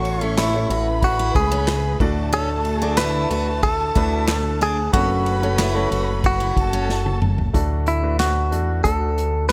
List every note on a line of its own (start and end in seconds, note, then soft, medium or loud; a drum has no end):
0.00 0.66 A1 loud
0.00 0.66 A2 medium
0.00 0.67 E3 medium
0.00 0.12 A3 medium
0.00 0.12 C#4 medium
0.00 0.12 E4 medium
0.00 0.25 F#4 loud
0.00 0.12 A4 medium
0.00 0.13 C#5 medium
0.00 0.68 C#5 medium
0.00 0.68 C#6 medium
0.05 ride medium
0.21 0.48 A3 medium
0.21 0.37 C#4 medium
0.21 0.48 C#4 medium
0.21 0.48 E4 medium
0.21 0.38 E4 loud
0.21 0.48 A4 medium
0.21 0.48 C#5 medium
0.38 0.69 E4 medium
0.38 1.05 E4 medium
0.38 snare loud
0.38 clap loud
0.38 ride medium
0.54 1.59 A3 medium
0.54 1.59 C#4 medium
0.54 1.59 E4 medium
0.54 1.59 A4 medium
0.54 1.60 C#5 medium
0.69 1.31 A1 loud
0.69 0.86 F#4 medium
0.69 1.98 B4 medium
0.69 1.98 B5 medium
0.69 ride medium
1.02 1.35 F#4 medium
1.02 kick medium
1.02 ride medium
1.19 1.35 E4 medium
1.35 1.96 C#2 medium
1.35 1.97 G#4 medium
1.35 kick medium
1.35 ride medium
1.52 1.67 C#4 medium
1.68 snare loud
1.68 clap medium
1.68 ride medium
2.00 3.26 D2 medium
2.00 2.95 A2 medium
2.00 2.66 A3 medium
2.00 4.89 A3 medium
2.00 2.66 D4 medium
2.00 2.66 F#4 medium
2.00 2.66 A4 medium
2.00 2.67 D5 medium
2.00 4.89 A5 loud
2.00 kick loud
2.00 ride medium
2.33 2.48 C#4 loud
2.33 2.77 A4 loud
2.33 ride medium
2.65 ride medium
2.77 2.95 G#4 loud
2.82 3.74 A3 medium
2.82 3.73 D4 medium
2.82 2.97 D4 medium
2.82 3.74 F#4 medium
2.82 3.74 A4 medium
2.82 3.74 D5 medium
2.97 3.29 E4 medium
2.97 3.63 B4 loud
2.97 snare loud
2.97 clap medium
2.97 ride medium
3.30 3.92 D2 medium
3.30 3.46 F#4 medium
3.30 ride medium
3.63 4.62 A4 loud
3.63 kick loud
3.63 ride medium
3.95 4.89 D2 medium
3.95 4.74 A3 medium
3.95 4.74 D4 medium
3.95 4.27 E4 medium
3.95 4.75 F#4 medium
3.95 4.75 A4 medium
3.95 4.75 B4 medium
3.95 kick medium
3.95 ride medium
4.28 snare loud
4.28 clap medium
4.28 ride medium
4.61 4.77 D4 medium
4.61 4.93 G#4 loud
4.61 ride medium
4.93 5.87 F#1 loud
4.93 5.87 C#3 medium
4.93 5.33 A3 medium
4.93 5.09 B3 loud
4.93 5.33 C#4 medium
4.93 6.20 F#4 loud
4.93 5.33 F#4 medium
4.93 5.33 A4 medium
4.93 6.53 B4 medium
4.93 5.33 C#5 medium
4.93 6.53 B5 medium
4.93 kick loud
4.93 ride medium
5.26 ride medium
5.42 5.68 A3 medium
5.42 5.69 C#4 medium
5.42 5.58 C#4 medium
5.42 5.69 F#4 medium
5.42 5.69 A4 medium
5.42 5.69 C#5 medium
5.59 5.90 E4 medium
5.59 snare loud
5.59 clap medium
5.59 ride medium
5.75 6.79 A3 medium
5.75 6.80 C#4 medium
5.75 6.80 F#4 medium
5.75 6.80 A4 medium
5.75 6.80 C#5 medium
5.91 6.52 F#1 medium
5.91 6.07 F#4 medium
5.91 ride medium
6.24 7.19 F#4 medium
6.24 kick loud
6.24 ride medium
6.40 6.56 E4 medium
6.57 7.50 F#1 medium
6.57 7.52 A4 medium
6.57 7.52 A5 medium
6.57 kick medium
6.57 ride medium
6.73 6.88 C#4 medium
6.89 snare medium
7.06 high tom medium
7.22 mid tom loud
7.38 floor tom medium
7.53 8.53 D2 medium
7.53 8.47 A2 medium
7.53 7.93 A3 medium
7.53 7.93 D4 medium
7.53 7.93 F#4 medium
7.53 7.93 A4 medium
7.53 kick medium
7.53 closed hi-hat medium
7.87 8.17 E4 medium
7.87 closed hi-hat medium
8.02 8.42 A3 medium
8.02 8.42 D4 medium
8.02 8.42 F#4 medium
8.02 8.43 B4 medium
8.19 8.84 F#4 medium
8.19 snare loud
8.19 clap medium
8.19 closed hi-hat medium
8.51 8.82 E2 medium
8.51 8.78 A3 medium
8.51 8.78 D4 medium
8.51 8.78 F#4 medium
8.51 8.78 A4 medium
8.51 closed hi-hat medium
8.84 9.52 D2 medium
8.84 9.49 A3 medium
8.84 9.50 D4 medium
8.84 9.50 F#4 medium
8.84 9.45 A4 medium
8.84 9.50 A4 medium
8.84 kick medium
8.84 closed hi-hat medium
9.18 closed hi-hat medium
9.49 9.52 B4 loud